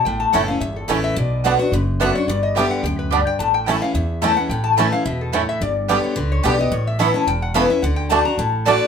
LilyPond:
<<
  \new Staff \with { instrumentName = "Resonator guitar played with a steel bar" } { \time 4/4 \key a \mixolydian \tempo 4 = 216 << { g''8 a''8 fis''8 f''8 e''8 a'8 cis''8 e''8 | d''4. cis''8 b'8 r8 e''8 cis''8 | d''8 ees''8 e''8 fis''8 g''8 b'8 d''8 g''8 | a''8 g''8 fis''8 f''8 e''4 a''8 fis''8 |
g''8 a''8 fis''8 f''8 e''8 a'8 cis''8 e''8 | d''8 r4 cis''8 b'8 cis''8 d''8 ees''8 | cis''8 e''8 fis''8 a''8 g''8 fis''8 f''8 e''8 | fis''8 g''8 a''8 bes''8 a''4.~ a''16 r16 | } \\ { r1 | r1 | r1 | r1 |
r1 | r1 | r1 | r2. d''4 | } >> }
  \new Staff \with { instrumentName = "Fiddle" } { \time 4/4 \key a \mixolydian r1 | r1 | r1 | r1 |
r1 | r1 | r1 | r2. d''4 | }
  \new Staff \with { instrumentName = "Mandolin" } { \time 4/4 \key a \mixolydian r4 <a e' cis'' a''>8 r4. <a e' cis'' a''>8 r8 | r4 <b fis' d'' fis''>8 r4. <b fis' d'' fis''>8 r8 | r4 <b g' d'' g''>8 r4. <b g' d'' g''>8 r8 | r4 <a e' cis'' a''>8 r4. <a e' cis'' a''>8 r8 |
r4 <a e' cis'' a''>8 r4. <a e' cis'' a''>8 r8 | r4 <b g' d'' g''>8 r4. <b g' d'' g''>8 r8 | r4 <cis' a' e'' b''>8 r4. <cis' a' e'' b''>8 r8 | r4 <a fis' d'' a''>8 r4. <a fis' d'' a''>8 r8 | }
  \new Staff \with { instrumentName = "Five-string banjo" } { \time 4/4 \key a \mixolydian r4 <a cis' e'>8 r4. <a cis' e'>8 r8 | r4 <b d'>8 r4. <b d'>8 r8 | r4 <g b d'>8 r4. <g b d'>8 r8 | r4 <a cis' e'>8 r4. <a cis' e'>8 r8 |
r4 <a cis' e'>8 r4. <a cis' e'>8 r8 | r4 <g b d'>8 r4. <g b d'>8 r8 | r4 <a b e'>8 r4. <a b e'>8 r8 | r4 <a d'>8 r4. <a d'>8 r8 | }
  \new Staff \with { instrumentName = "Steel-string acoustic guitar" } { \time 4/4 \key a \mixolydian << { r4 <e a cis' e'>8 <cis' e'>8 r4 <e a cis' e'>4 | r4 <d b d' fis'>8 <d' fis'>8 r4 <d b d' fis'>8 <d' fis'>8 | r4 <d g b g'>4 r2 | r4 <e a cis' e'>8 <cis' e'>8 r4 <e a cis' e'>8 <cis' e'>8 |
r4 <e a cis' e'>8 <cis' e'>8 r2 | r4 <d g b g'>4 r4 <d g b g'>8 <b g'>8 | r4 <e b cis' e'>8 <cis' e'>8 r4 <e b cis' e'>8 <cis' e'>8 | r4 <d a d' fis'>8 <d' fis'>8 r4 <d a d' fis'>4 | } \\ { a,2 e,2 | b,2 fis,2 | g,2 fis,4 g,4 | a,2 e,2 |
a,2 b,4 a,4 | g,2 d2 | a,2 e,2 | d2 a,2 | } >> }
  \new Staff \with { instrumentName = "Upright bass" } { \clef bass \time 4/4 \key a \mixolydian a,,4 fis,,4 g,,4 a,,4 | b,,2 fis,,2 | g,,2 d,2 | a,,2 e,2 |
a,,2 e,2 | g,,2 cis,4 b,,4 | a,,2 e,,2 | d,2 a,,2 | }
>>